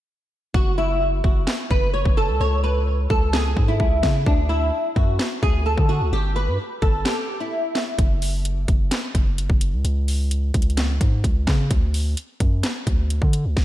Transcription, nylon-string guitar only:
0.54 0.75 F#4 medium
0.78 0.98 E4 medium
1.24 1.68 F#4 medium
1.71 1.91 B4 medium
1.94 2.14 C#5 medium
2.17 2.37 A4 medium
2.41 2.61 C#5 medium
2.64 2.84 B4 medium
3.10 3.30 A4 medium
3.33 3.66 G#4 medium
3.68 4.23 E4 medium
4.27 4.47 D4 medium
4.49 4.70 E4 medium
4.96 5.40 F#4 medium
5.43 5.63 G#4 medium
5.66 5.86 A4 medium
5.89 6.09 F#4 medium
6.13 6.33 G4 loud
6.36 6.56 B4 medium
6.82 7.02 A4 medium
7.06 7.38 G4 medium
7.40 7.95 E4 medium

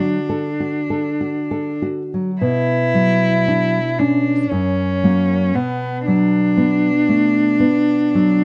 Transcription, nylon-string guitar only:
0.00 2.38 D3 soft
0.00 0.17 F#3 soft
0.00 0.48 F#4 soft
0.29 0.79 A4 soft
0.60 1.09 F#4 soft
0.90 1.39 A4 soft
1.21 1.71 F#4 soft
1.51 2.02 A4 soft
1.82 2.30 F#4 soft
2.14 2.42 F#3 soft
2.41 4.46 B2 soft
2.94 3.78 F#3 soft
3.48 4.30 D4 soft
3.99 4.51 C#4 soft
4.51 5.52 F#2 soft
5.04 5.51 F#3 soft
5.04 5.52 A#3 soft
5.55 8.44 B2 soft
6.08 6.89 F#3 soft
6.57 7.39 B3 soft
7.09 7.60 A3 soft
7.60 8.44 B3 soft
8.15 8.44 F#3 soft

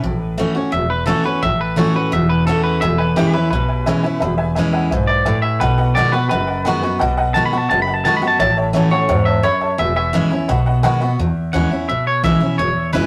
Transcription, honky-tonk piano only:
2.82 2.92 B4 loud
2.82 2.92 E5 medium
2.82 2.92 G#5 loud
2.99 3.10 B4 medium
2.99 3.09 E5 medium
2.99 3.10 G#5 loud
3.17 3.27 B4 medium
3.17 3.27 E5 medium
3.17 3.27 G#5 medium
3.33 3.44 B4 medium
3.33 3.44 E5 medium
3.33 3.44 G#5 medium
3.51 3.61 B4 medium
3.51 3.62 E5 medium
3.51 3.62 G#5 medium
3.68 3.79 B4 medium
3.68 3.79 E5 medium
3.68 3.79 G#5 medium
3.86 3.97 B4 loud
3.86 3.97 E5 loud
3.86 3.97 G#5 loud
4.03 4.14 B4 loud
4.03 4.14 E5 medium
4.03 4.14 G#5 loud
4.20 4.31 B4 loud
4.20 4.31 E5 loud
4.20 4.31 B5 loud
4.38 4.49 B4 loud
4.38 4.49 E5 loud
4.38 4.49 G#5 loud
4.55 4.66 B4 medium
4.55 4.66 E5 medium
4.55 4.66 G#5 loud
4.73 4.83 B4 medium
4.73 4.83 E5 medium
4.73 4.84 F#5 medium
4.91 5.01 B4 medium
4.91 5.01 E5 medium
4.91 5.02 G#5 medium
5.08 5.19 B4 medium
5.08 5.19 E5 medium
5.08 5.19 G#5 medium
5.25 5.36 B4 loud
5.25 5.36 E5 medium
5.25 5.36 G#5 loud
5.42 5.53 B4 medium
5.42 5.53 E5 medium
5.42 5.53 G#5 medium
5.60 5.71 B4 loud
5.60 5.71 D#5 loud
5.60 5.71 F#5 loud
5.78 5.88 B4 loud
5.78 5.88 D#5 medium
5.78 5.88 F#5 loud
5.95 6.05 B4 medium
5.95 6.06 D#5 medium
5.95 6.06 F#5 loud
6.12 6.23 B4 medium
6.12 6.23 D#5 medium
6.12 6.23 F#5 medium
6.29 6.40 B4 medium
6.29 6.40 D#5 medium
6.29 6.40 F#5 medium
6.47 6.58 B4 medium
6.47 6.58 D#5 medium
6.47 6.58 F#5 medium
6.64 6.75 B4 loud
6.64 6.75 D#5 medium
6.64 6.75 F#5 loud
6.83 6.93 B4 medium
6.83 6.93 D#5 medium
6.83 6.93 G#5 loud
6.99 7.10 B4 loud
6.99 7.10 D#5 loud
6.99 7.10 F#5 loud
7.17 7.28 B4 loud
7.17 7.28 D#5 loud
7.17 7.28 F#5 loud
7.34 7.45 B4 medium
7.34 7.45 D#5 medium
7.34 7.45 F#5 medium
7.52 7.63 B4 medium
7.52 7.63 D#5 medium
7.52 7.63 F#5 medium
7.70 7.80 B4 medium
7.70 7.80 D#5 medium
7.70 7.80 F#5 medium
7.87 7.97 B4 medium
7.87 7.97 D#5 medium
7.87 7.97 F#5 medium
8.05 8.15 B4 loud
8.05 8.15 D#5 medium
8.05 8.15 F#5 loud
8.22 8.32 B4 medium
8.22 8.32 D#5 medium
8.22 8.33 F#5 medium
8.40 8.50 C#5 loud
8.40 8.50 E5 loud
8.40 8.50 A5 loud
8.57 8.67 C#5 loud
8.57 8.67 E5 medium
8.57 8.68 A5 loud
8.74 8.85 C#5 medium
8.74 8.85 E5 medium
8.74 8.85 A5 loud
8.92 9.02 C#5 medium
8.92 9.02 E5 medium
8.92 9.02 F#5 medium
9.08 9.19 C#5 medium
9.08 9.19 E5 medium
9.08 9.19 F#5 medium
9.26 9.37 C#5 medium
9.26 9.37 E5 medium
9.26 9.37 A5 medium
9.44 9.54 C#5 loud
9.44 9.54 E5 loud
9.44 9.54 B5 loud
9.61 9.71 C#5 medium
9.61 9.72 E5 medium
9.61 9.72 A5 medium
9.78 9.89 B4 medium
9.78 9.89 E5 loud
9.78 9.89 G#5 loud
9.96 10.06 B4 loud
9.96 10.06 E5 medium
9.96 10.07 G#5 loud
10.14 10.24 B4 medium
10.14 10.24 E5 medium
10.14 10.24 G#5 medium
10.31 10.42 B4 medium
10.31 10.42 E5 medium
10.31 10.42 G#5 medium
10.48 10.59 B4 loud
10.48 10.59 D#5 medium
10.48 10.59 F#5 loud
10.66 10.76 B4 medium
10.66 10.76 D#5 medium
10.66 10.77 F#5 loud
10.83 10.94 B4 loud
10.83 10.94 D#5 loud
10.83 10.94 F#5 loud
11.01 11.11 B4 loud
11.01 11.11 D#5 medium
11.01 11.11 F#5 loud

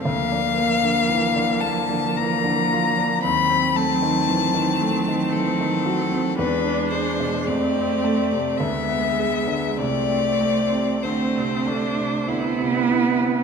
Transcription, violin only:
0.04 1.63 F5 medium
1.61 2.18 A5 medium
2.17 3.22 A#5 medium
3.23 3.78 B5 medium
3.76 5.34 A5 medium
5.32 6.37 A4 medium
6.37 6.91 B4 medium
6.91 7.48 C5 medium
7.47 8.59 D5 medium
8.57 9.79 E5 medium
9.77 11.04 D5 medium
11.03 12.89 C5 medium

